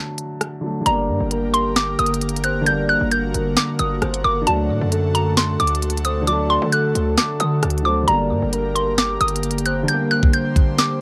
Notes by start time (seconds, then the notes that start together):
Already playing: D3 F#3 A3
0.18 closed hi-hat
0.41 cross-stick, closed hi-hat
0.61 D3 F#3
0.66 A3
0.81 D3
0.86 G1 D3 G3 A#3 G4 A#4 D5 A#5, closed hi-hat
0.91 A#3
1.09 G2
1.21 G1
1.31 A#4, closed hi-hat
1.54 C6, closed hi-hat
1.76 D6, snare, closed hi-hat
1.99 G1 D#6, closed hi-hat
2.06 closed hi-hat
2.14 closed hi-hat
2.21 closed hi-hat
2.29 closed hi-hat
2.36 closed hi-hat
2.44 C5 F#6, closed hi-hat
2.61 D3
2.66 G3 F#4 D5 G6, closed hi-hat
2.72 A#3
2.89 F#6
3.01 G1
3.11 A#4 G6, closed hi-hat
3.34 G1, closed hi-hat
3.57 D6, snare, closed hi-hat
3.79 G1 D#6, closed hi-hat
4.02 G1 C5, cross-stick, closed hi-hat
4.14 closed hi-hat
4.24 G1 A#4 D6
4.42 D3
4.47 D2 F#3 A3 A4 D5 A5, closed hi-hat
4.52 A3
4.70 A2
4.81 F#2
4.92 A4, closed hi-hat
5.15 A#5, closed hi-hat
5.37 C6, snare, closed hi-hat
5.60 D2 D6, closed hi-hat
5.67 closed hi-hat
5.75 closed hi-hat
5.82 closed hi-hat
5.90 closed hi-hat
5.97 closed hi-hat
6.05 C5 D#6, closed hi-hat
6.22 D3
6.27 F#3 D5 D6, closed hi-hat
6.32 A3
6.50 C6
6.62 D3
6.72 A4 F#6, closed hi-hat
6.95 D2, closed hi-hat
7.17 D6, snare, closed hi-hat
7.40 D3 D#6, closed hi-hat
7.63 D2, cross-stick, closed hi-hat
7.70 closed hi-hat
7.78 closed hi-hat
7.83 D3 F#3 C5 D6
7.88 A3
8.03 D3
8.08 G1 G3 A#3 G4 A#4 D5 A#5, closed hi-hat
8.13 A#3
8.30 G2
8.42 G1
8.53 A#4, closed hi-hat
8.75 C6, closed hi-hat
8.98 D6, snare, closed hi-hat
9.21 G1 D#6, closed hi-hat
9.28 closed hi-hat
9.36 closed hi-hat
9.43 closed hi-hat
9.51 closed hi-hat
9.58 closed hi-hat
9.66 C5 F#6, closed hi-hat
9.83 D3
9.88 G3 C5 G6, closed hi-hat
9.94 A#3
10.11 F#6
10.23 kick
10.33 G6, closed hi-hat
10.56 kick, closed hi-hat
10.78 D6, snare, closed hi-hat